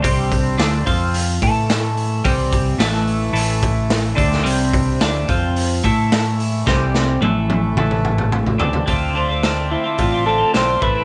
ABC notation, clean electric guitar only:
X:1
M:4/4
L:1/16
Q:1/4=108
K:Dm
V:1 name="Clean electric guitar"
[C,G,C]4 [D,A,D]2 [F,CF]4 [A,EA]6 | [C,G,C]4 [A,,E,A,]4 [A,,E,A,]6 [D,A,D]2 | [C,G,C]4 [D,A,D]2 [F,CF]4 [A,EA]6 | [C,G,C]4 [A,,E,A,]4 [A,,E,A,]6 [D,A,D]2 |
[D,A,CF]2 [D,A,CF] [A,CF] [D,A,CF]2 [D,A,CF] [A,CF] [D,A,CF] [A,CF] [D,A,CF] [A,CF] [D,A,CF]2 [A,,E,A,CE] [A,CE] |]